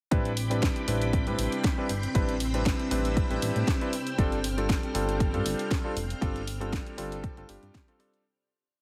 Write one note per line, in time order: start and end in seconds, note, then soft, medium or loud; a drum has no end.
0.11 0.69 A1 medium
0.11 0.30 G3 medium
0.11 0.30 C4 medium
0.11 8.22 C4 medium
0.11 0.30 D4 medium
0.11 0.30 E4 medium
0.11 0.30 B4 medium
0.11 8.21 G5 medium
0.11 4.15 B5 medium
0.11 2.13 D6 medium
0.11 kick loud
0.11 closed hi-hat medium
0.25 closed hi-hat soft
0.37 open hi-hat loud
0.50 0.85 G3 medium
0.50 0.85 C4 medium
0.50 0.85 D4 medium
0.50 0.85 E4 medium
0.50 0.85 B4 medium
0.50 closed hi-hat soft
0.62 kick loud
0.62 snare loud
0.62 closed hi-hat medium
0.76 closed hi-hat soft
0.87 1.29 A1 medium
0.87 1.24 G3 medium
0.87 1.24 C4 medium
0.87 1.24 D4 medium
0.87 1.24 E4 medium
0.87 1.24 B4 medium
0.87 open hi-hat loud
1.02 closed hi-hat medium
1.13 kick loud
1.13 closed hi-hat medium
1.27 1.35 A2 medium
1.27 1.75 G3 medium
1.27 1.75 C4 medium
1.27 1.75 D4 medium
1.27 1.75 E4 medium
1.27 1.75 B4 medium
1.27 closed hi-hat soft
1.39 1.48 A1 medium
1.39 open hi-hat loud
1.52 closed hi-hat soft
1.64 kick loud
1.64 snare loud
1.64 closed hi-hat medium
1.78 1.88 G3 medium
1.78 1.88 C4 medium
1.78 1.88 D4 medium
1.78 1.89 E4 medium
1.78 1.89 B4 medium
1.89 2.07 G1 medium
1.89 open hi-hat loud
2.03 closed hi-hat soft
2.14 2.72 A1 loud
2.14 2.33 G3 medium
2.14 2.33 C4 medium
2.14 2.33 D4 medium
2.14 2.34 E4 medium
2.14 2.34 B4 medium
2.14 4.16 E6 medium
2.14 kick loud
2.14 closed hi-hat medium
2.29 closed hi-hat soft
2.40 open hi-hat loud
2.54 2.88 G3 medium
2.54 2.89 C4 medium
2.54 2.89 D4 medium
2.54 2.89 E4 medium
2.54 2.89 B4 medium
2.54 closed hi-hat soft
2.66 kick loud
2.66 snare loud
2.66 closed hi-hat medium
2.79 closed hi-hat soft
2.91 3.23 A1 loud
2.91 3.27 G3 medium
2.91 3.27 C4 medium
2.91 3.27 D4 medium
2.91 3.27 E4 medium
2.91 3.27 B4 medium
2.91 open hi-hat loud
3.05 closed hi-hat soft
3.17 kick loud
3.17 closed hi-hat medium
3.30 3.38 A1 loud
3.30 3.78 G3 medium
3.30 3.78 C4 medium
3.30 3.78 D4 medium
3.30 3.78 E4 medium
3.30 3.78 B4 medium
3.30 closed hi-hat soft
3.42 3.51 A1 medium
3.42 open hi-hat loud
3.56 3.64 A2 medium
3.56 closed hi-hat soft
3.68 kick loud
3.68 snare loud
3.68 closed hi-hat medium
3.81 3.91 G3 medium
3.81 3.92 C4 medium
3.81 3.92 D4 medium
3.81 3.92 E4 medium
3.81 3.92 B4 medium
3.81 closed hi-hat soft
3.93 open hi-hat loud
4.07 closed hi-hat soft
4.18 4.76 G1 loud
4.18 4.37 G3 medium
4.18 4.37 C4 medium
4.18 4.37 D4 medium
4.18 4.37 F4 medium
4.18 4.37 A4 loud
4.18 8.21 F6 medium
4.18 kick loud
4.18 closed hi-hat medium
4.32 closed hi-hat soft
4.44 open hi-hat loud
4.57 4.92 G3 medium
4.57 4.92 C4 medium
4.57 4.92 D4 medium
4.57 4.92 F4 medium
4.57 4.92 A4 medium
4.57 closed hi-hat soft
4.69 kick loud
4.69 snare loud
4.69 closed hi-hat medium
4.83 closed hi-hat soft
4.94 5.35 G1 loud
4.94 5.30 G3 medium
4.94 5.30 C4 medium
4.94 5.31 D4 medium
4.94 5.31 F4 medium
4.94 5.31 A4 medium
4.94 open hi-hat loud
5.09 closed hi-hat soft
5.20 kick loud
5.20 closed hi-hat medium
5.33 5.42 G2 medium
5.33 5.81 G3 medium
5.33 5.81 C4 medium
5.33 5.81 D4 medium
5.33 5.82 F4 medium
5.33 5.82 A4 medium
5.33 closed hi-hat soft
5.46 5.55 G1 medium
5.46 open hi-hat loud
5.59 closed hi-hat soft
5.71 kick loud
5.71 snare loud
5.71 closed hi-hat medium
5.84 5.95 G3 medium
5.84 5.95 C4 medium
5.84 5.95 D4 medium
5.84 5.95 F4 medium
5.84 5.95 A4 medium
5.97 6.14 F1 medium
5.97 open hi-hat loud
6.10 closed hi-hat soft
6.21 6.79 G1 loud
6.21 6.40 G3 medium
6.21 6.40 C4 medium
6.21 6.40 D4 medium
6.21 6.40 F4 medium
6.21 6.41 A4 loud
6.21 kick loud
6.21 closed hi-hat medium
6.36 closed hi-hat soft
6.47 open hi-hat loud
6.60 6.95 G3 medium
6.60 6.95 C4 medium
6.60 6.95 D4 medium
6.60 6.95 F4 medium
6.60 6.96 A4 medium
6.60 closed hi-hat soft
6.73 kick loud
6.73 snare loud
6.73 closed hi-hat medium
6.87 closed hi-hat soft
6.98 7.30 G1 loud
6.98 7.34 G3 medium
6.98 7.34 C4 medium
6.98 7.34 D4 medium
6.98 7.34 F4 medium
6.98 7.34 A4 medium
6.98 open hi-hat loud
7.12 closed hi-hat soft
7.24 kick loud
7.24 closed hi-hat medium
7.37 7.45 G1 loud
7.37 7.47 G3 medium
7.37 7.47 C4 medium
7.37 7.47 D4 medium
7.37 7.47 F4 medium
7.37 7.47 A4 medium
7.37 closed hi-hat soft
7.49 7.58 G1 medium
7.49 7.85 G3 medium
7.49 7.85 C4 medium
7.49 7.85 D4 medium
7.49 7.85 F4 medium
7.49 7.85 G4 medium
7.49 open hi-hat loud
7.63 7.71 G2 medium
7.63 closed hi-hat soft
7.74 kick loud
7.74 snare loud
7.74 closed hi-hat medium
7.88 7.97 G3 medium
7.88 7.97 C4 medium
7.88 7.97 D4 medium
7.88 7.97 F4 medium
7.88 7.97 A4 medium
7.88 closed hi-hat soft
7.99 8.22 G3 loud
7.99 8.22 C4 medium
7.99 8.22 D4 medium
7.99 8.23 F4 medium
7.99 8.23 A4 loud
7.99 open hi-hat loud
8.14 closed hi-hat soft